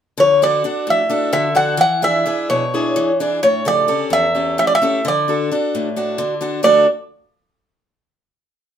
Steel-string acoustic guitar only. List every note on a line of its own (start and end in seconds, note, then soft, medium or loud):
0.18 0.62 D3 medium
0.42 0.63 D4 soft
0.42 0.64 F#4 soft
0.42 0.63 A4 soft
0.64 1.01 D4 soft
0.64 1.02 F#4 soft
0.64 1.02 A4 soft
0.87 1.32 A2 medium
1.10 1.47 D4 soft
1.10 1.48 F#4 soft
1.10 1.48 A4 soft
1.33 1.78 D3 medium
1.55 1.74 D4 soft
1.55 1.74 F#4 soft
1.55 1.75 A4 medium
1.77 2.24 E3 medium
2.02 2.24 D4 soft
2.02 2.25 E4 soft
2.02 2.26 G#4 medium
2.26 2.63 D4 soft
2.26 2.64 E4 soft
2.26 2.64 G#4 soft
2.50 2.95 B2 medium
2.74 3.11 D4 soft
2.74 3.11 E4 soft
2.74 3.11 G#4 soft
2.96 3.41 E3 medium
3.20 3.39 D4 soft
3.20 3.39 E4 soft
3.20 3.39 G#4 medium
3.43 3.88 A2 medium
3.65 4.03 C#3 soft
3.65 3.87 G4 soft
3.65 3.87 A4 soft
3.88 4.26 C#4 soft
3.88 4.26 G4 soft
3.88 4.26 A4 soft
4.10 4.56 E2 medium
4.35 4.72 C#4 soft
4.35 4.72 G4 soft
4.35 4.72 A4 soft
4.58 5.03 A2 medium
4.82 5.00 C#4 soft
4.82 5.01 G4 soft
4.82 5.01 A4 soft
5.05 5.49 D3 medium
5.28 5.50 D4 soft
5.28 5.51 F#4 soft
5.28 5.51 A4 soft
5.52 5.88 D4 soft
5.52 5.88 F#4 soft
5.52 5.88 A4 soft
5.75 6.19 A2 medium
5.96 6.33 D4 soft
5.96 6.33 F#4 soft
5.96 6.33 A4 soft
6.18 6.62 D3 medium
6.41 6.60 D4 soft
6.41 6.60 F#4 soft
6.41 6.60 A4 soft
6.63 6.85 D3 medium
6.63 6.85 A3 soft
6.63 6.86 D4 soft
6.63 6.86 F#4 soft
6.63 6.86 A4 medium